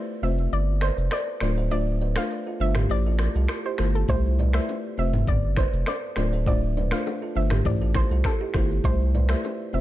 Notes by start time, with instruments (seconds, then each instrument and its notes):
0.22 sub bass F1, marimba A3 C4 F4 C5, kalimba C5 E5, synth pluck E5, shaker
0.38 shaker
0.52 sub bass G1, synth pluck D5, shaker
0.81 kalimba B4 D5, synth pluck C5, finger snap, cross-stick, shaker
0.97 sub bass F1, shaker
1.11 kalimba A4 C5, synth pluck D5, finger snap, cross-stick, shaker
1.40 sub bass D1, marimba A3 D4 F4 C5, kalimba A4 D5, finger snap, cross-stick, shaker
1.57 kalimba A4 C5, shaker
1.71 marimba A3 D4 F4 C5, kalimba C5 E5, synth pluck D5, shaker
2.01 kalimba B4 D5, shaker
2.16 marimba A3 D4 F4 C5, kalimba A4 C5, synth pluck F5, finger snap, cross-stick, shaker
2.31 shaker
2.47 kalimba F4 A4
2.60 sub bass G1, marimba A3 D4 F4 C5, synth pluck E5, shaker
2.75 kalimba E4 G4, finger snap, cross-stick, mid tom, shaker
2.89 sub bass A1, marimba A3 E4 G4 C5, synth pluck D5, shaker
3.06 kalimba F4 A4
3.19 finger snap, cross-stick, shaker
3.35 sub bass C2, kalimba F4 A4, shaker
3.48 finger snap, cross-stick, shaker
3.66 kalimba E4 G4, synth pluck C5
3.78 sub bass G1, marimba A3 E4 G4 C5, kalimba F4 A4, finger snap, cross-stick, shaker
3.95 synth pluck A4, shaker
4.08 sub bass C2, marimba A3 E4 G4 C5, synth pluck C5, kalimba C5 E5, kick, low conga, shaker
4.39 kalimba B4 D5, low bongo, low conga, shaker
4.53 marimba A3 E4 G4 C5, synth pluck E5, finger snap, cross-stick, shaker
4.69 high bongo, shaker
4.98 sub bass F1, marimba A3 C4 F4 C5, kalimba C5 E5, synth pluck E5, shaker
5.13 mid tom, low bongo, shaker
5.27 sub bass G1, synth pluck D5, kick, mid tom, low conga, shaker
5.57 kalimba B4 D5, synth pluck C5, finger snap, kick, cross-stick, low bongo, shaker
5.73 sub bass F1, shaker
5.86 kalimba A4 C5, synth pluck D5, finger snap, cross-stick, high bongo, shaker
6.16 sub bass D1, marimba A3 D4 F4 C5, kalimba A4 D5, finger snap, cross-stick, high bongo, shaker
6.33 kalimba A4 C5, shaker
6.46 marimba A3 D4 F4 C5, kalimba C5 E5, synth pluck D5, kick, low conga, shaker
6.76 kalimba B4 D5, low bongo, low conga, shaker
6.91 marimba A3 D4 F4 C5, kalimba A4 C5, synth pluck F5, finger snap, cross-stick, shaker
7.06 high bongo, shaker
7.22 kalimba F4 A4
7.35 sub bass G1, marimba A3 D4 F4 C5, synth pluck E5, shaker
7.50 kalimba E4 G4, finger snap, cross-stick, mid tom, low bongo, shaker
7.65 sub bass A1, marimba A3 E4 G4 C5, synth pluck D5, kick, mid tom, low conga, shaker
7.82 kalimba F4 A4
7.95 synth pluck C5, finger snap, kick, cross-stick, low bongo, shaker
8.11 sub bass C2, kalimba F4 A4, shaker
8.24 synth pluck A4, finger snap, kick, cross-stick, high bongo, shaker
8.41 kalimba E4 G4
8.54 sub bass G1, marimba A3 E4 G4 C5, kalimba F4 A4, finger snap, kick, cross-stick, high bongo, shaker
8.70 shaker
8.84 sub bass C2, marimba A3 E4 G4 C5, synth pluck C5, kalimba C5 E5, kick, low conga, shaker
9.14 kalimba B4 D5, low bongo, low conga, shaker
9.29 marimba A3 E4 G4 C5, synth pluck E5, finger snap, cross-stick, shaker
9.44 high bongo, shaker
9.73 sub bass F1, marimba A3 C4 F4 C5, kalimba C5 E5, synth pluck E5, shaker